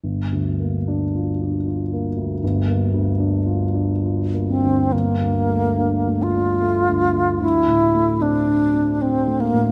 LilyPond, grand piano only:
\new Staff \with { instrumentName = "Grand piano" } { \time 3/4 \key g \dorian \tempo 4 = 75 \tuplet 3/2 { g,,8 d,8 bes8 d'8 f'8 d'8 f'8 bes8 d,8 } | \tuplet 3/2 { g,,8 bes8 d,8 d'8 f'8 d'8 f'8 bes8 d,8 } | \tuplet 3/2 { g,,8 d,8 a8 d'8 a8 d'8 a8 d,8 a8 } | \tuplet 3/2 { d,8 a,8 a8 c'8 d'8 c'8 d'8 a8 a,8 } | }